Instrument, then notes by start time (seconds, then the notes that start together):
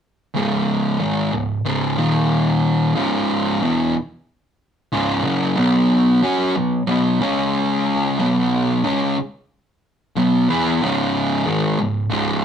distorted electric guitar
0.35 C#2 G#2 C#3
1.00 G#2 D#3 G#3
1.32 C#2 G#2
1.65 C#2 G#2 C#3
1.97 D#2 A#2 D#3
2.95 C#2 G#2 C#3
3.62 E2 B2 E3
4.92 C#2 G#2 C#3
5.23 F#2 C#3 F#3
5.57 B2 F#3 B3
6.23 F#3 C#4 F#4
6.55 B2 F#3
6.87 B2 F#3 B3
7.21 C#3 G#3 C#4
8.19 B2 F#3 B3
8.84 C#3 G#3 C#4
10.16 B2 F#3 B3
10.49 E3 B3 E4
10.81 C#2 G#2 C#3
11.46 G#2 D#3 G#3
11.79 C#2 G#2
12.10 C#2 G#2 C#3